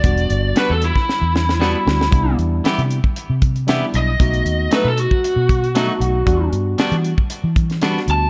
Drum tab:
HH |xxx-x-x---------|x-x-xxx-x-xxx-x-|xxx-x-x-x-xxx-x-|x-x-xxx-x-xxx-x-|
SD |----o--oo-ooo-oo|----o-------o---|----o-------o---|----o------ooo--|
BD |o------o--------|o------o--o-----|o------o--o-----|o------o--o-----|